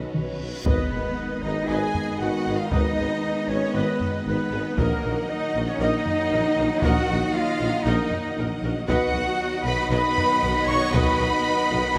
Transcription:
Already playing: trombone section F#3 C#4, string section C#4 F#4 B4 C#5, french horn section D#4, violin section D#5 F#5, reverse cymbal
0.02 viola section A4
0.14 double bass section B1, tuba B1, cello section B2, viola section B4, taiko mid
0.39 double bass section B1, tuba B1, cello section B2
0.64 double bass section G#1, tuba G#1, trombone section D#3 G#3, cello section B3, french horn section B3 D#4, string section B3 D#4 B4 D#5, trumpet section B4, viola section B4 D#5, flute B4, violin section B4 D#5, taiko, impact
0.91 double bass section G#1, tuba G#1, viola section G#4 B4
1.42 double bass section G#1, tuba G#1, cello section D#4, viola section G#4 B4, flute D#5, trumpet section D#5, violin section D#5
1.67 double bass section G#1, tuba G#1, cello section G#4, viola section B4 D#5, flute G#5, trumpet section G#5, violin section G#5
1.95 taiko low
2.19 double bass section G#1, tuba G#1, cello section F#4, viola section B4, violin section F#5, flute F#5, trumpet section F#5
2.46 double bass section G#1, tuba G#1, viola section G#4 B4
2.58 cello section F4, violin section F5, trumpet section F5, flute F5
2.71 double bass section G#1, tuba G#1, cello section D#4, viola section B4 D#5, flute D#5, violin section D#5, trumpet section D#5, taiko
2.97 double bass section G#1, tuba G#1, viola section G#4 B4
3.48 double bass section G#1, tuba G#1, cello section C#4, viola section G#4 B4, flute C#5, trumpet section C#5, violin section C#5
3.74 tuba G#1, double bass section G#1, cello section B3, violin section B4, flute B4, viola section B4 D#5, trumpet section B4
4.00 taiko low
4.25 tuba G#1, double bass section G#1, cello section B3, flute B4, violin section B4, viola section B4, trumpet section B4
4.52 tuba G#1, double bass section G#1, viola section G#4 B4
4.76 double bass section A#1, tuba A#1, trombone section D#3 F#3, string section F#3 A#3 D#4 D#5, cello section A#3, french horn section A#3 D#4, viola section A#4 D#5, flute A#4, violin section A#4 D#5 F#5, trumpet section A#4, taiko
5.03 double bass section A#1, tuba A#1, viola section F#4 A#4
5.29 cello section D#4, violin section D#5, flute D#5, trumpet section D#5
5.55 double bass section A#1, tuba A#1, viola section F#4 A#4
5.68 cello section C#4, violin section C#5, trumpet section C#5, flute C#5
5.79 tuba A#1, double bass section A#1, cello section D#4, viola section A#4 D#5, violin section D#5, flute D#5, trumpet section D#5
6.06 taiko low
6.32 double bass section A#1, tuba A#1, viola section A#4
6.57 double bass section A#1, tuba A#1, viola section F#4 A#4
6.82 double bass section A#1, tuba A#1, cello section F#4, viola section A#4 D#5, violin section F#5, trumpet section F#5, flute F#5, taiko
7.08 tuba A#1, double bass section A#1, viola section F#4 A#4
7.34 cello section F4, trumpet section D#5, flute F5, violin section F5
7.60 tuba A#1, double bass section A#1, viola section F#4 A#4
7.84 double bass section A#1, tuba A#1, cello section D#4, viola section A#4 D#5, violin section D#5, flute D#5, trumpet section D#5
8.11 taiko low
8.36 tuba A#1, double bass section A#1, viola section A#4
8.62 tuba A#1, double bass section A#1, viola section F#4 A#4
8.87 double bass section B1, tuba B1, trombone section D#3 F#3, string section B3 D#4 F#4 D#5, french horn section B3 D#4, cello section F#4, viola section B4 D#5, violin section D#5 F#5, flute F#5, trumpet section F#5, taiko
9.13 double bass section B1, tuba B1, viola section F#4 B4
9.65 double bass section B1, tuba B1, viola section F#4 B4, cello section B4, trumpet section B5, violin section B5, flute B5
9.90 double bass section B1, tuba B1, cello section B4, viola section B4 D#5, trumpet section B5, violin section B5, flute B5
10.18 taiko low
10.42 double bass section B1, tuba B1, viola section B4
10.67 double bass section B1, tuba B1, viola section F#4 B4, cello section C#5, violin section C#6, flute C#6, trumpet section C#6
10.91 double bass section B1, cello section B4, viola section B4 D#5, flute B5, violin section B5, trumpet section B5, taiko
10.96 tuba B1
11.18 double bass section B1, tuba B1, viola section F#4 B4
11.71 double bass section B1, tuba B1, viola section F#4 B4

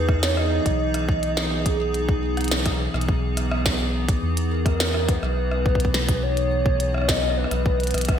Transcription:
Already playing: analog synth bass E2, ambient pad E3 B3 D#4 G#4, soft synth lead B4
0.09 kick, cross-stick
0.23 soft synth lead C#5, snare, closed hi-hat
0.37 soft synth lead D#5, cross-stick
0.66 analog synth bass B1, kick, closed hi-hat
0.80 soft synth lead D#5
0.94 cross-stick, closed hi-hat
1.09 kick
1.23 closed hi-hat
1.37 snare
1.66 soft synth lead G#4, kick, closed hi-hat
1.94 closed hi-hat
2.09 kick
2.37 cross-stick, closed hi-hat
2.41 closed hi-hat
2.44 closed hi-hat
2.48 snare, closed hi-hat
2.66 kick, cross-stick, closed hi-hat
2.94 analog synth bass B1, cross-stick
3.01 closed hi-hat
3.09 kick
3.37 cross-stick, closed hi-hat
3.51 cross-stick
3.66 kick, snare, closed hi-hat
4.09 kick, closed hi-hat
4.23 analog synth bass E2
4.37 closed hi-hat
4.51 soft synth lead A#4
4.66 kick, cross-stick, closed hi-hat
4.80 snare
4.94 cross-stick
5.09 soft synth lead B4, kick, closed hi-hat
5.23 analog synth bass B1, cross-stick
5.51 cross-stick
5.66 kick
5.75 kick
5.80 closed hi-hat
5.85 kick
5.94 snare
6.09 kick, closed hi-hat
6.23 soft synth lead C#5
6.37 closed hi-hat
6.66 kick
6.80 closed hi-hat
6.94 cross-stick
6.98 cross-stick
7.02 cross-stick
7.05 soft synth lead D#5, kick, cross-stick
7.09 cross-stick, snare, closed hi-hat
7.12 cross-stick
7.16 cross-stick
7.19 cross-stick
7.23 cross-stick
7.30 cross-stick
7.37 soft synth lead B4
7.44 cross-stick
7.51 analog synth bass B1, cross-stick, closed hi-hat
7.66 kick
7.80 closed hi-hat
7.84 closed hi-hat
7.87 closed hi-hat
7.91 analog synth bass B1, cross-stick, closed hi-hat
7.94 closed hi-hat
7.98 closed hi-hat
8.01 closed hi-hat
8.05 kick, cross-stick, closed hi-hat
8.09 closed hi-hat

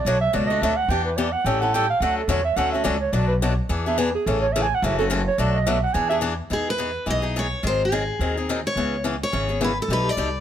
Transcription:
0.05 upright bass B1, steel-string acoustic guitar B2 F#3 A3 D4 F#4, clarinet C#5
0.21 clarinet E5
0.33 upright bass C#2, steel-string acoustic guitar B2 F#3 A3 D4 F#4, clarinet D5
0.47 steel-string acoustic guitar F#4, clarinet D#5
0.51 steel-string acoustic guitar A3 D4
0.62 upright bass D2, steel-string acoustic guitar B2 F#3 A3 D4 F#4, clarinet E5
0.76 clarinet F#5
0.88 upright bass E2, steel-string acoustic guitar E3 B3 D4 G4, clarinet G5
1.05 clarinet B4
1.16 steel-string acoustic guitar E3 B3 D4 G4, clarinet D5
1.32 clarinet F#5
1.44 upright bass A1, steel-string acoustic guitar E3 G3 C#4 E4 A4, clarinet G5
1.61 steel-string acoustic guitar C#4 E4 A4, clarinet F#5
1.74 steel-string acoustic guitar E3 G3 C#4 E4 A4, clarinet G5
1.90 clarinet F5
2.00 upright bass D2, steel-string acoustic guitar D3 F#3 A3 C#4 F#4, clarinet F#5
2.18 clarinet A4
2.28 upright bass E2, steel-string acoustic guitar D3 F#3 A3 C#4 F#4, clarinet C#5
2.44 clarinet E5
2.56 upright bass D2, steel-string acoustic guitar D3 F#3 A3 C#4 F#4, clarinet F#5
2.72 steel-string acoustic guitar A3 C#4 F#4, clarinet E5
2.84 upright bass C#2, steel-string acoustic guitar D3 F#3 A3 C#4 F#4, clarinet D5
3.00 clarinet C#5
3.12 upright bass B1, steel-string acoustic guitar B2 F#3 A3 D4 F#4, clarinet D5
3.28 clarinet B4
3.42 steel-string acoustic guitar B2 F#3 A3 D4 F#4
3.69 upright bass E2, steel-string acoustic guitar E3 B3 D4 G#4
3.86 steel-string acoustic guitar B3 D4 G#4, clarinet E5
3.98 steel-string acoustic guitar E3 B3 D4 G#4, clarinet B4
4.15 clarinet G#4
4.26 upright bass A1, steel-string acoustic guitar C#3 E3 A3 C#4 G#4, clarinet A4
4.41 clarinet C#5
4.52 steel-string acoustic guitar C#3 E3 A3 C#4 G#4, clarinet E5
4.62 clarinet G#5
4.74 clarinet F#5
4.82 upright bass F#1, steel-string acoustic guitar C#3 E3 A3 C#4 F#4, clarinet E5
4.98 steel-string acoustic guitar A3 C#4 F#4, clarinet A4
5.10 steel-string acoustic guitar C#3 E3 A3 C#4 F#4
5.27 clarinet C#5
5.38 upright bass B1, steel-string acoustic guitar B2 F#3 A3 D4 F#4, clarinet D5
5.55 clarinet D#5
5.67 steel-string acoustic guitar B2 F#3 A3 D4 F#4, clarinet E5
5.83 clarinet F#5
5.93 upright bass E2, steel-string acoustic guitar E3 B3 D4 G#4, clarinet G#5
6.09 steel-string acoustic guitar B3 D4 G#4, clarinet E5
6.21 steel-string acoustic guitar E3 B3 D4 G#4
6.50 upright bass E2, steel-string acoustic guitar E3 B3 D#4 G#4
6.70 steel-string acoustic guitar B4
6.78 steel-string acoustic guitar E3 B3 D#4 G#4
7.06 upright bass B1, steel-string acoustic guitar E3 B3 D#4 G#4
7.10 steel-string acoustic guitar D#5
7.22 steel-string acoustic guitar B3 D#4 G#4
7.36 steel-string acoustic guitar E3 B3 D#4 G#4 C#5
7.63 upright bass G#1, steel-string acoustic guitar D#3 F#3 C4 D#4 G#4 C5
7.85 steel-string acoustic guitar G#4
7.92 steel-string acoustic guitar D#3 F#3 C4 D#4 G#4
8.19 upright bass D#2, steel-string acoustic guitar D#3 F#3 C4 D#4 G#4
8.37 steel-string acoustic guitar C4 D#4 G#4
8.49 steel-string acoustic guitar D#3 F#3 C4 D#4 G#4
8.67 steel-string acoustic guitar C#5
8.76 upright bass C#2, steel-string acoustic guitar C#3 E3 B3 C#4 G#4
9.04 steel-string acoustic guitar C#3 E3 B3 C#4 G#4
9.23 steel-string acoustic guitar C#5
9.32 upright bass G#1, steel-string acoustic guitar C#3 E3 B3 C#4 G#4
9.49 steel-string acoustic guitar B3 C#4 G#4
9.61 steel-string acoustic guitar C#3 E3 B3 C#4 G#4 B4
9.82 steel-string acoustic guitar A4
9.88 upright bass B1, steel-string acoustic guitar B2 G3 A3 D#4 G4
9.93 steel-string acoustic guitar B4
10.09 steel-string acoustic guitar D5
10.17 upright bass C2, steel-string acoustic guitar B2 G3 A3 D#4 G4

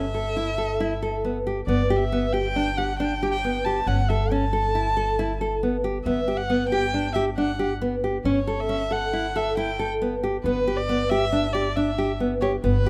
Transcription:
Already playing: upright bass G1, violin E5
0.14 nylon-string guitar A4
0.36 nylon-string guitar E4
0.58 nylon-string guitar A4
0.80 nylon-string guitar E4
1.02 nylon-string guitar A4
1.25 nylon-string guitar B3
1.47 nylon-string guitar G4
1.66 upright bass G1, nylon-string guitar B3, violin D5
1.90 nylon-string guitar G4
1.99 violin E5
2.12 nylon-string guitar B3
2.32 nylon-string guitar G4, violin G5
2.56 nylon-string guitar D4
2.77 nylon-string guitar G4, violin F#5
2.99 nylon-string guitar D4, violin G5
3.23 nylon-string guitar G4
3.31 violin G5
3.44 nylon-string guitar B3
3.65 nylon-string guitar G4, violin A5
3.87 upright bass G1, nylon-string guitar C#4, violin F#5
4.08 nylon-string guitar A4, violin E5
4.32 nylon-string guitar C#4, violin A5
4.53 nylon-string guitar A4
4.75 nylon-string guitar E4
4.97 nylon-string guitar A4
5.19 nylon-string guitar E4
5.41 nylon-string guitar A4
5.63 nylon-string guitar B3
5.84 nylon-string guitar G4
6.04 upright bass G1, nylon-string guitar B3, violin E5
6.28 nylon-string guitar G4
6.37 violin F#5
6.50 nylon-string guitar B3
6.69 nylon-string guitar G4, violin G5
6.94 nylon-string guitar D4
7.13 nylon-string guitar G4, violin E5
7.37 nylon-string guitar D4, violin F#5
7.59 nylon-string guitar G4
7.81 nylon-string guitar B3
8.04 nylon-string guitar G4
8.25 upright bass G1, nylon-string guitar C#4, violin C#5
8.47 nylon-string guitar A4
8.60 violin E5
8.69 nylon-string guitar C#4
8.91 nylon-string guitar A4, violin F#5
9.13 nylon-string guitar E4
9.36 nylon-string guitar A4, violin E5
9.57 nylon-string guitar E4, violin G5
9.79 nylon-string guitar A4
10.02 nylon-string guitar B3
10.23 nylon-string guitar G4
10.44 upright bass G1, nylon-string guitar B3, violin B4
10.68 nylon-string guitar G4
10.77 violin D5
10.89 nylon-string guitar B3
11.10 nylon-string guitar G4, violin E5
11.32 nylon-string guitar D4
11.53 nylon-string guitar G4, violin D5
11.76 nylon-string guitar D4, violin E5
11.98 nylon-string guitar G4
12.20 nylon-string guitar B3
12.41 nylon-string guitar G4, violin C#5
12.64 upright bass G1, nylon-string guitar B3, violin B4

